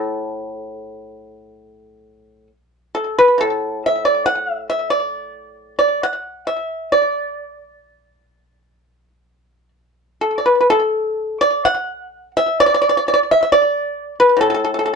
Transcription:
Already playing: A2 A4
2.95 A4
3.18 B4
3.38 A2 A4
3.86 E5
4.05 D5
4.26 F#5
4.53 E5
4.70 E5
4.90 D5
5.79 D5
6.03 F#5
6.47 E5
6.92 D5
10.21 A4
10.38 D5
10.46 B4
10.60 B4
10.70 A4
11.41 D5
11.65 F#5
12.37 E5
12.60 D5
12.66 D5
12.74 D5
12.82 D5
12.89 D5
12.97 D5
13.08 D5
13.14 D5
13.31 E5
13.43 E5
13.52 D5
14.20 B4
14.37 A2
14.41 A4
14.50 A4
14.54 A4
14.65 A4
14.74 A4
14.79 A4
14.86 A4

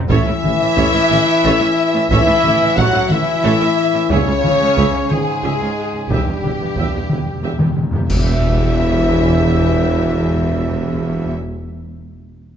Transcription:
0.08 A1 A2 E3 E4 A4 C#5 E5, taiko
0.26 A2 C#4 E4
0.43 A1 A2 E4 A4, taiko mid
0.60 A2 C#4 E4
0.76 A1 A2 A4 C#5, taiko
0.93 A2 C#4 E4
1.10 A1 A2 E4 A4, taiko mid
1.44 A1 A2 A4 C#5
1.60 A2 C#4 E4
1.94 A2 C#4 E4
2.09 A1 A2 E3 E4 A4 C#5 E5, taiko
2.27 A2 C#4 E4
2.44 A1 A2 E4 A4, taiko mid
2.60 A2 C#4 E4
2.76 A1 A2 F#3 F#4 A4 C#5 F#5, taiko
2.94 A2 C#4 E4
3.09 A1 A2 E3 E4 A4 E5, taiko mid
3.43 A1 A2 A4 C#5
3.61 A2 C#4 E4
3.94 A2 C#4 E4
4.10 C#2 C#3 C#4 G#4 C#5 E5, taiko
4.27 C#2 C#4 G#4
4.44 C#2 E4 C#5, taiko mid
4.61 C#2 C#4 G#4
4.77 C#2 G#4 E5, taiko
4.93 C#2 C#4 G#4
5.10 C#2 G#2 G#3 E4 G#4 C#5, taiko mid
5.43 C#2 G#4 E5
5.61 C#2 C#4 G#4
5.94 C#2 C#4 G#4
6.10 E1 E2 G2 G3 G4 E5, taiko
6.25 E2 B3 G4
6.32 E2
6.40 E2, taiko mid
6.44 E1 E2 E4 B4
6.54 E2
6.61 E2 B3 G4
6.69 E2
6.76 E1 E2 G4 E5, taiko
6.84 E2
6.92 E2 B3 G4
6.99 E2
7.08 E1 E2 E4 B4, taiko mid
7.15 E2
7.23 E2
7.31 E2
7.38 E2
7.43 E1 E2 G4 E5
7.53 E2
7.59 E2 B3 G4, taiko mid
7.68 E2
7.76 E2, taiko mid
7.83 E2
7.91 E2 B3 G4, taiko low
7.97 E2
8.07 E1 E2 E3 E4 G4 E5, concert bass drum, crash
8.11 E2
8.17 E2
8.25 E2
8.32 E2
8.39 E2
8.46 E2
8.54 E2
8.69 E2
8.78 E2
8.85 E2
8.92 E2
9.00 E2
9.07 E2
9.14 E2
9.22 E2
9.29 E2
9.37 E2
9.44 E2
9.52 E2
9.68 E2
9.75 E2
9.82 E2
9.90 E2
9.97 E2
10.05 E2
10.13 E2
10.20 E2
10.27 E2
10.35 E2
10.42 E2
10.49 E2
10.57 E2
10.64 E2
10.71 E2
10.79 E2
10.87 E2
10.94 E2
11.02 E2
11.10 E2
11.18 E2
11.25 E2

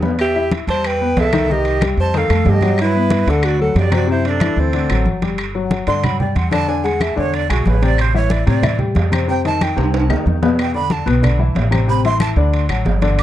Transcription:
Already playing: E2
0.02 B3 B4, high conga, low timbale
0.19 G4 E5, high conga, high timbale, claves
0.36 E4 E5, high conga
0.51 high conga, high timbale
0.67 E2 G3 G4 C5 A5, high conga, high timbale
0.84 B4 G5, high conga, high timbale, claves
1.00 B3 B4, high conga
1.16 C2 A4 E5, high conga, high timbale, low timbale
1.33 D#3 D#4, high conga, high timbale, claves
1.49 D#3 D#4 G4 D#5, high conga
1.65 high conga, high timbale
1.81 G3 G4, high conga, high timbale, claves
1.97 F2 C5 A5, high conga
2.13 D#3 D#4 A4, high conga, high timbale
2.18 F5
2.30 F2 A3 A4, high conga, high timbale, claves
2.45 G2 G4, high conga, low timbale
2.50 D#5
2.61 F#3 F#4, high conga, high timbale
2.78 E4, high conga, high timbale, claves
2.83 B4
2.95 B3 B4, high conga
3.10 high conga, high timbale
3.27 D2 D3 D4 A4 F#5, high conga, high timbale
3.43 F#4, high conga, high timbale, claves
3.47 D5
3.59 F#3 F#4 A4 F#5, high conga
3.75 F#2 G4, high conga, high timbale, low timbale
3.80 D5
3.91 C3 C4 F#4, high conga, high timbale, claves
3.96 D5
4.07 C3 C4 C5, high conga
4.11 E4
4.24 D4, high conga, high timbale
4.29 A4
4.40 E3 E4, high conga, high timbale, claves
4.56 D2 C4 A4, high conga
4.73 D3 D4, high conga, high timbale
4.90 A1 F#3 F#4, high conga, high timbale, claves
5.05 G1, high conga
5.22 G3 G4, high conga, high timbale
5.38 high conga, high timbale, claves
5.55 F#3 F#4 F#5, high conga
5.71 high conga, high timbale
5.87 G2 D3 D4 D5 C6, high conga, high timbale
6.04 F#3 F#4 F#5 B5, high conga, low conga, high timbale, claves
6.20 G3 G4 D5 G5, high conga, low conga
6.36 E2 F#5, high conga, high timbale
6.51 D3 D4 D5 A5, high conga, high timbale, claves
6.68 D3 D4 D5 G#5, high conga
6.84 G#3 G#4 F#5 G#5, high conga, high timbale
7.00 E5, high conga, high timbale, claves
7.16 E2 D3 D4 C#5 D5, high conga
7.33 D5, high conga, high timbale
7.49 B1 G#3 F#4 G#4 G#5, high conga, high timbale, claves
7.66 A1 B4, high conga, low timbale
7.82 C3 C4 C5 D5, high conga, high timbale
7.98 C5, high conga, high timbale, claves
8.14 E3 E4 C#5 E5, high conga
8.30 D5, high conga, high timbale
8.47 A2 C3 C4 C5 D5, high conga, high timbale
8.63 E3 E4 E5, high conga, low conga, high timbale, claves
8.78 G3 G4 G5, high conga, low conga
8.95 F2, high conga, high timbale, low timbale
9.12 C3 C4 C5, high conga, high timbale, claves
9.28 C3 C4 C5 G5, high conga
9.45 D#3 D#4 D#5 A5, high conga, high timbale
9.61 G5, high conga, high timbale, claves
9.76 C2 C3 C4 C5, high conga, high timbale
9.94 high conga, high timbale
10.09 D2 D#3 D#4 D#5, high conga, low timbale, claves
10.26 E2, high conga
10.42 B2 B3 B4, high conga, low timbale
10.59 G5, high conga, high timbale, claves
10.74 D3 D4 D5 B5, high conga
10.90 A5, high conga, high timbale
11.06 B1 B2 B3 B4, high conga, high timbale
11.22 D3 D4 D5, high conga, low conga, high timbale, claves
11.39 E3 E4 E5, high conga
11.55 A1, high conga, high timbale, low timbale
11.71 C3 C4 C5, high conga, high timbale, claves
11.88 C3 C4 C5 B5, high conga
12.05 E3 E4 E5 C6, high conga, high timbale
12.20 A5, high conga, high timbale, claves
12.36 D2 D3 D4 D5, high conga
12.53 high conga, high timbale
12.69 A1 F#3 F#4 F#5, high conga, high timbale, claves
12.85 G1, high conga, low timbale
13.02 D3 D4 D5, high conga, high timbale
13.19 D6, high timbale, claves

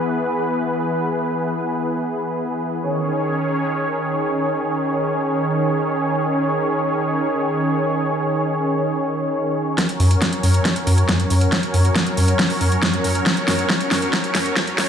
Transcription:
Already playing: E3 B3 G#4 B4
2.82 D#3 C#4 G#4 C#5
9.78 F#3 C#4 A#4 C#5, kick, snare, closed hi-hat
9.89 closed hi-hat
10.00 F#2, open hi-hat
10.11 closed hi-hat
10.22 kick, snare, closed hi-hat
10.33 closed hi-hat
10.43 F#2, open hi-hat
10.54 closed hi-hat
10.65 kick, snare, closed hi-hat
10.76 closed hi-hat
10.87 F#2, open hi-hat
10.98 closed hi-hat
11.09 F#2, kick, snare, closed hi-hat
11.20 closed hi-hat
11.30 F#2, open hi-hat
11.41 closed hi-hat
11.52 kick, snare, closed hi-hat
11.63 closed hi-hat
11.74 F#2, open hi-hat
11.85 closed hi-hat
11.96 kick, snare, closed hi-hat
12.06 closed hi-hat
12.17 F#2, open hi-hat
12.28 closed hi-hat
12.39 kick, snare, closed hi-hat
12.50 open hi-hat
12.61 F#2, open hi-hat
12.72 closed hi-hat
12.83 F#2, kick, snare, closed hi-hat
12.93 closed hi-hat
13.04 F#2, open hi-hat
13.15 closed hi-hat
13.26 kick, snare, closed hi-hat
13.37 closed hi-hat
13.48 F#2, snare, open hi-hat
13.59 closed hi-hat
13.70 kick, snare, closed hi-hat
13.80 closed hi-hat
13.91 F#2, snare, open hi-hat
14.02 closed hi-hat
14.13 kick, snare, closed hi-hat
14.24 closed hi-hat
14.35 F#2, snare, open hi-hat
14.46 closed hi-hat
14.56 F#2, kick, snare, closed hi-hat
14.67 closed hi-hat
14.78 F#2, snare, open hi-hat

